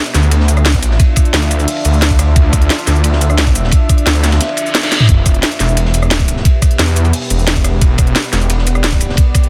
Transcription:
Already playing: D4 F4 E5
0.05 closed hi-hat, ride
0.14 D2, snare, closed hi-hat, ride, shaker
0.23 shaker
0.31 closed hi-hat, ride
0.40 snare
0.48 closed hi-hat, ride, shaker
0.57 cross-stick, shaker
0.65 snare, closed hi-hat, ride
0.74 kick, closed hi-hat
0.82 closed hi-hat, ride, shaker
0.91 snare
0.99 kick, closed hi-hat, ride
1.16 kick, cross-stick, closed hi-hat, ride, shaker
1.25 closed hi-hat
1.33 D2, snare, closed hi-hat, ride
1.42 closed hi-hat
1.51 closed hi-hat, ride, shaker
1.59 ride, shaker
1.67 closed hi-hat, open hi-hat
1.77 ride
1.85 D2, closed hi-hat, ride, shaker
1.93 shaker
2.02 snare, closed hi-hat
2.10 kick, closed hi-hat
2.19 cross-stick, closed hi-hat, ride, shaker
2.36 D2, kick, closed hi-hat, ride
2.53 D2, kick, cross-stick, closed hi-hat, ride, shaker
2.62 closed hi-hat
2.70 snare, closed hi-hat, ride
2.78 closed hi-hat, ride
2.87 D2, snare, closed hi-hat, ride, shaker
2.96 shaker
3.04 closed hi-hat, ride
3.12 snare
3.21 closed hi-hat, ride, shaker
3.30 cross-stick, shaker
3.38 snare, closed hi-hat, ride
3.47 kick, closed hi-hat
3.55 closed hi-hat, ride, shaker
3.64 snare
3.71 kick, closed hi-hat, ride
3.89 kick, cross-stick, closed hi-hat, ride, shaker
3.98 closed hi-hat
4.06 D2, snare, closed hi-hat, ride
4.15 closed hi-hat
4.23 snare, closed hi-hat, ride, shaker
4.32 snare, ride, shaker
4.40 snare, closed hi-hat, ride, reverse cymbal
4.49 ride
4.57 closed hi-hat, ride, shaker
4.66 shaker
4.75 snare, closed hi-hat, ride
4.83 snare, closed hi-hat
4.92 snare, closed hi-hat, ride, shaker
5.00 mid tom
5.09 E1 B3 G4, kick, closed hi-hat, ride
5.26 E1, kick, cross-stick, closed hi-hat, ride, shaker
5.34 closed hi-hat
5.43 snare, closed hi-hat, ride
5.51 closed hi-hat, ride
5.59 E1, snare, closed hi-hat, ride, shaker
5.68 shaker
5.77 closed hi-hat, ride
5.85 snare
5.94 closed hi-hat, ride, shaker
6.03 cross-stick, shaker
6.10 snare, closed hi-hat, ride
6.20 kick, closed hi-hat
6.28 closed hi-hat, ride, shaker
6.37 snare
6.45 kick, closed hi-hat, ride
6.62 kick, cross-stick, closed hi-hat, ride, shaker
6.71 closed hi-hat
6.79 E2, snare, closed hi-hat, ride
6.88 closed hi-hat
6.96 closed hi-hat, ride, shaker
7.05 ride, shaker
7.13 closed hi-hat, open hi-hat
7.22 ride
7.30 E1, closed hi-hat, ride, shaker
7.39 shaker
7.47 snare, closed hi-hat
7.56 kick, closed hi-hat
7.64 cross-stick, closed hi-hat, ride, shaker
7.81 E1 D5, kick, closed hi-hat, ride
7.98 E1, kick, cross-stick, closed hi-hat, ride, shaker
8.07 closed hi-hat
8.15 snare, closed hi-hat, ride
8.23 closed hi-hat, ride
8.33 E1, snare, closed hi-hat, ride, shaker
8.41 shaker
8.50 closed hi-hat, ride
8.58 snare
8.67 closed hi-hat, ride, shaker
8.75 cross-stick, shaker
8.84 snare, closed hi-hat, ride
8.92 kick, closed hi-hat
9.00 closed hi-hat, ride, shaker
9.09 snare
9.17 kick, closed hi-hat, ride
9.34 kick, cross-stick, closed hi-hat, ride, shaker
9.43 closed hi-hat

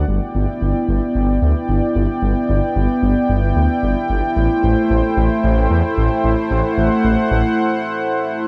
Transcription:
0.08 G1 B3 E4 D5 G5
0.35 G1
0.62 G1
0.88 G1
1.15 G1
1.42 D2
1.69 G1
1.95 G1
2.22 G1
2.49 G1
2.76 G1
3.02 G1
3.29 G1
3.56 D2
3.83 G1
4.10 G1
4.36 A1 A3 C5
4.63 A1
4.90 A1
5.17 A1
5.44 A1
5.70 E2
5.97 A1
6.24 A1
6.51 A1 F#5
6.78 A1
7.04 A1
7.31 A1

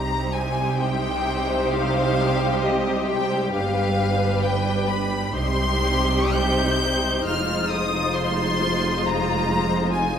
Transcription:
Already playing: C2 C3 G3 D#4 G4 C5 A#5
0.33 G#5
0.79 G5
1.72 F5
2.63 D#5
3.06 G5
3.53 G1 G2 D4 B4 F5
4.43 G5
4.88 B5
5.33 C2 C3 G3 D#4 G4 C5 C6
6.33 G6
7.25 F1 F2 G#3 F4 F6
7.69 D#6
8.15 C6
9.05 A#5
9.92 G#5

